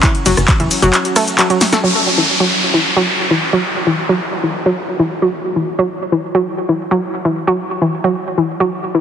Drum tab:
RD |--x---x---x---x-|----------------|----------------|----------------|
HH |xxoxxxoxxxoxxxox|----------------|----------------|----------------|
SH |x-xxx-xxx-xxx-xx|----------------|----------------|----------------|
CP |x---x---x---x---|----------------|----------------|----------------|
SD |---r------r---oo|----------------|----------------|----------------|
BD |o---o-----------|----------------|----------------|----------------|

RD |----------------|
HH |----------------|
SH |----------------|
CP |----------------|
SD |----------------|
BD |----------------|